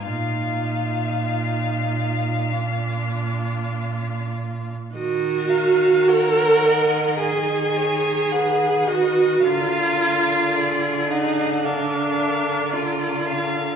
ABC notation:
X:1
M:4/4
L:1/8
Q:1/4=53
K:Ebm
V:1 name="Violin"
F4 F4 | e f g2 a2 g e | f2 =d g f2 d f |]
V:2 name="Violin"
f6- f z | B2 d e e d c2 | B2 A2 B4 |]
V:3 name="Viola"
E4 =D4 | G2 B2 A3 G | F3 E =D2 F2 |]
V:4 name="Cello" clef=bass
B,,8 | E,8 | =D,8 |]